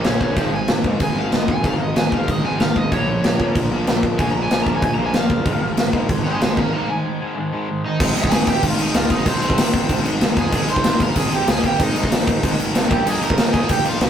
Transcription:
Already playing: A#2 F3 A#3
0.04 A#1 A#2 F3 C#5 F5, snare, crash
0.21 A#1 A#2 F3 C#5 F5, kick
0.36 G#1 G#2 D#3 G#3 C5 F5, kick, crash
0.53 G#1 G#2 D#3 G#5
0.68 G#1 G#2 D#3, snare, crash
0.84 G#2 D#3 G#3, kick
0.99 G#1 G#2 D#3 G#3 G#5, kick, crash
1.16 G#1 G#2 D#3 G#3 F5
1.32 G#1 G#2 D#3 D#5, snare, crash
1.48 G#2 D#3 G#5, kick
1.63 G#1 G#2 D#3 G#3 F5, kick, crash
1.79 G#1 G#2 D#3 D#5
1.96 G#1 G#2 D#3 G#5, snare, crash
2.12 G#1 G#2 D#3 G#3 F5, kick
2.28 G#1 G#2 D#3 G#3 D#5, kick, crash
2.43 G#1 G#2 D#3 G#3 G#5
2.59 G#1 G#2 D#3 F5, snare, crash
2.76 G#1 G#2 D#3 D#5, kick
2.91 A#1 A#2 F3 A#3 C#5, kick, crash
3.07 A#1 A#2 F3
3.23 A#1 A#2 F3, snare, crash
3.39 A#2 F3 A#3, kick
3.55 A#1 A#2 F3 A#3, kick, crash
3.71 A#1 A#2 F3 A#3
3.87 A#1 A#2 F3, snare, crash
4.03 A#2 F3, kick
4.19 A#1 A#2 F3 A#3 G#5, kick, crash
4.31 A#1 A#2 A#5
4.35 F3
4.43 G#5
4.51 A#1 A#2 F3 G#5, snare, crash
4.64 A#1 A#2 F3 A#3 A#5, kick
4.75 G#5
4.82 A#1 A#2 F3 A#3 G#5, kick, crash
4.94 A#1 A#2 F3 A#5
4.99 A#3
5.06 G#5
5.13 A#1 A#2 F3 F5, snare, crash
5.30 F#1 A#2 F3, kick
5.45 G#1 G#2 D#3 G#3, kick, crash
5.61 G#1 G#2 D#3
5.77 G#1 G#2 D#3, snare, crash
5.93 G#2 D#3 G#3, kick
6.09 G#1 G#2 D#3 G#3, kick, crash
6.25 G#1 G#2 D#3 G#3 D#5 G#5
6.40 G#1 G#2 D#3 D#5 G#5, snare, crash
6.57 G#2 D#3 F5 A#5, kick
6.73 G#2 D#3 G#3 F5 A#5
6.89 G#2 D#3 G#5
7.06 G#2 D#3
7.21 G#2 D#3 G#3
7.36 G#2 D#3 G#3
7.52 G#2 D#3 G#3
7.69 G#2 D#3
7.85 G#2 D#3 D#4 D#5
8.00 G#1 G#2 D#3 G#3, kick, crash
8.14 G#1 G#2 D#3 G#3 G#4 G#5, crash
8.24 kick
8.31 G#1 G#2 D#3 G#3, snare, crash
8.46 G#2 D#3 G#3 G4 G5, kick, crash
8.63 G#1 G#2 D#3 G#3 F4 F5, kick, crash
8.79 G#2 D#3 G#3 D#4 D#5, crash
8.94 C#2 G#2 D#3 G#3 F4 F5, snare, crash
9.10 G#1 G#2 D#3 G#3 D#4 D#5, kick, crash
9.26 G#1 G#2 D#3 G#3 C4 C5, kick, crash
9.40 G#1 G#2 D#3 G#3 C4 C5, crash
9.50 kick
9.56 G#1 G#2 D#3 G#3, snare, crash
9.72 G#2 D#3 G#3, kick, crash
9.88 G#1 G#2 D#3 G#3, kick, crash
10.04 G#1 G#2 D#3 G#3, crash
10.21 G#1 G#2 D#3 G#3, snare, crash
10.36 F1 G#2 D#3 G#3 G#4 G#5, kick, crash
10.52 G#1 G#2 D#3 G#3, kick, crash
10.67 G#1 G#2 D#3 G#3 C5 C6, crash
10.76 kick
10.83 G#1 G#2 D#3 G#3, snare, crash
10.99 G#2 D#3 G#3 A#4 A#5, kick, crash
11.15 G#1 G#2 D#3 G#3 G#4 G#5, kick, crash
11.31 G#2 D#3 G#3 G4 G5, crash
11.47 C#2 G#2 D#3 G#3 G#4 G#5, snare, crash
11.63 G#1 G#2 D#3 G#3 G4 G5, kick, crash
11.78 G#1 G#2 D#3 G#3 D#4, kick, crash
11.82 D#5
11.94 G#1 G#2 D#3 G#3 D#4 D#5, crash
12.04 kick
12.11 G#1 G#2 D#3 G#3, snare, crash
12.26 G#2 D#3 G#3, kick, crash
12.42 G#1 G#2 D#3 G#3, kick, crash
12.58 G#1 G#2 D#3 G#3, crash
12.74 G#1 G#2 D#3 G#3, snare, crash
12.90 G1 D#3 A#3 D#4 G4 G5, kick, crash
13.05 G1 D#3 A#3 D#4 G#4 G#5, crash
13.21 G1 D#3 A#3 D#4 A#4 A#5, crash
13.30 kick
13.37 G1 D#3 A#3 D#4, snare, crash
13.52 D#3 A#3 D#4 G#4 G#5, kick, crash
13.68 G1 D#3 A#3 D#4 G4 G5, kick, crash
13.84 D#3 A#3 D#4 F4 F5, crash
14.00 C2 D#3 A#3 D#4, snare, crash

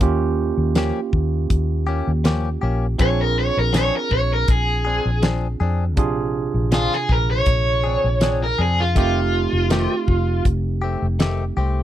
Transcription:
0.00 D#2 A#3 C#4 F4 G4, kick, closed hi-hat
0.58 D#2
0.75 F3 A#3 C#4 G4, snare, closed hi-hat
1.13 D#2, kick
1.50 D#2, kick, closed hi-hat
1.87 A#3 C#4 G4
2.07 D#2
2.24 F3 A#3 C#4 G4, snare, closed hi-hat
2.61 A#1 A#3 C#4 G4
2.98 A#1 F3 C4 D4 F4 G#4 C#5, kick, closed hi-hat
3.22 A#4
3.39 C#5
3.57 A#1 A#4
3.73 F3 C4 D4 G#4, snare, closed hi-hat
3.77 C#5
3.97 A#4
4.11 A#1 C#5, kick
4.33 A#4
4.48 A#1 G#4, kick, closed hi-hat
4.85 C4 D4 G#4
5.06 A#1
5.22 F3 C4 D4 G#4, snare, closed hi-hat
5.60 F2 C4 D4 G#4
5.97 A#1 C3 D4 F4 G#4, kick, closed hi-hat
6.54 A#1
6.72 F3 C4 D4 F4 G#4, snare, closed hi-hat
6.92 G#4, snare
7.09 A#1 A#4, kick
7.31 C#5
7.46 A#1, kick, closed hi-hat
7.84 C4 D4 G#4
8.04 A#1
8.21 F3 C4 D4 G#4, snare, closed hi-hat
8.44 A#4
8.58 F2 C4 D4 G#4
8.80 F4
8.95 F1 D#3 A3 C4 D#4 F4 G4, kick, closed hi-hat
9.53 F1
9.70 D#3 A3 C4 G4, snare, closed hi-hat
10.08 F1, kick
10.45 F1, kick, closed hi-hat
10.82 A3 C4 G4
11.02 F1
11.20 D#3 A3 C4 G4, snare, closed hi-hat
11.57 C2 A3 C4 G4

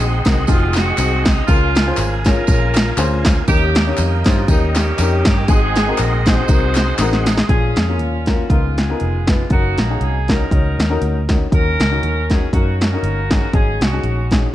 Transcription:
Already playing: A#1 C4 D#4 F#4 G#4 D#5 F#5 C6
0.25 C2 C4 D#4 F#4 A#4, kick, snare, closed hi-hat, tambourine
0.47 F1 G#2 C4 D#4 F4 F#4 G#4, kick, closed hi-hat, tambourine
0.74 C4 D#4 F#4, snare, clap, closed hi-hat, tambourine
0.98 C2 C4 D#4 F#4 G#4, clap, closed hi-hat, tambourine
1.25 D#4, kick, snare, closed hi-hat, tambourine
1.47 C#2 C#3 G#3 A#3 C#4 F4 G#4 A#4 F5 G#5, kick, closed hi-hat, tambourine
1.75 snare, closed hi-hat, tambourine
1.87 C#4 F4 G#4 C5
1.97 G#1 G#4, clap, closed hi-hat, tambourine
2.25 C#4 F4 G#4 A#4 C#5, kick, snare, closed hi-hat, tambourine
2.47 A#1 C#4 F4 G#4 C#5, kick, closed hi-hat, tambourine
2.74 snare, clap, closed hi-hat, tambourine
2.97 D2 C#4 F4 G#4 C5, clap, closed hi-hat, tambourine
3.25 kick, snare, closed hi-hat, tambourine
3.48 D#2 D#3 A#3 C#4 D#4 G4 A#4 D#5 G5, kick, closed hi-hat, tambourine
3.75 snare, closed hi-hat, tambourine
3.86 C#4 D#4 G4 C#5
3.97 F2, clap, closed hi-hat, tambourine
4.24 G2 C#4 D#4 F4 G4 C5, kick, snare, closed hi-hat, tambourine
4.48 D#2 G3 A#3 C#4 D#4 G4 A#4, kick, closed hi-hat, tambourine
4.75 A#3 C#4 G4, snare, clap, closed hi-hat, tambourine
4.98 F2 C#4 D#4 G4 A#4, clap, closed hi-hat, tambourine
5.25 G2 G4, kick, snare, closed hi-hat, tambourine
5.47 G#1 G#2 C4 D#4 F#4 G#4 D#5 F#5 C6, kick, closed hi-hat, tambourine
5.75 snare, closed hi-hat, tambourine
5.87 C4 D#4 F#4 A#4
5.98 A#1 A#4, clap, closed hi-hat, tambourine
6.26 C4 D#4 F#4 G#4 C5, kick, snare, closed hi-hat, tambourine
6.48 C2 C4 D#4 F#4 A#4, kick, closed hi-hat, tambourine
6.75 snare, clap, closed hi-hat, tambourine
6.98 A1 C4 D#4 F#4 A#4, snare, clap, closed hi-hat, tambourine
7.13 snare
7.26 snare, closed hi-hat, tambourine
7.38 snare
7.49 A#1 A#2 A#3 C#4 F4 G#4, kick, closed hi-hat
7.76 F2, snare, closed hi-hat
7.88 A#3 C#4 F4 A#4
7.99 D#2, closed hi-hat
8.26 A#3 C#4 F4 F#4 A#4, kick, snare, closed hi-hat
8.48 C#2 C#3 G#3 B3 D#4 F4 A#4, kick, closed hi-hat
8.77 B3 F4 G#4, snare, closed hi-hat
8.89 B3 D#4 F4 A#4
9.00 F1, closed hi-hat
9.27 B3 D#4 F4 B4, kick, snare, closed hi-hat
9.50 F#1 A#3 C#4 D#4 F#4 A#4, kick, closed hi-hat
9.78 A#1 F#4, snare, closed hi-hat
9.90 C#4 D#4 F#4 G#4
10.01 C2 G#4, closed hi-hat
10.28 C#4 D#4 F#4 A#4, kick, snare, closed hi-hat
10.51 C#2 C#4 D#4 F#4 C#5, kick, closed hi-hat
10.79 D#2, snare, closed hi-hat
10.89 C#4 D#4 F#4 A#4
11.02 D2, closed hi-hat
11.29 C#4 D#4 F#4 A#4, kick, snare, closed hi-hat
11.51 D#2 D#3 C#4 D#4 F#4 A#4, kick, closed hi-hat
11.80 C#2, snare, closed hi-hat
11.91 C#4 D#4 F#4 A#4
12.03 D#2, closed hi-hat
12.30 C#4 D#4 F#4 G#4 A#4, kick, snare, closed hi-hat
12.53 F#2 A#3 C#4 D#4 F#4 A#4, kick, closed hi-hat
12.81 C#4 F#4 A#4, snare, closed hi-hat
12.93 C#4 D#4 F#4 A#4
13.03 G1, closed hi-hat
13.31 C#4 D#4 F#4 G#4, kick, snare, closed hi-hat
13.53 G#1 G#2 C#4 D#4 F#4 G#4, kick, closed hi-hat
13.81 C2 C#4 D#4 F#4, snare, closed hi-hat
13.92 C#4 D#4 F#4 G#4
14.04 A#1, closed hi-hat
14.31 C#4 D#4 F#4 G#4, kick, snare, closed hi-hat

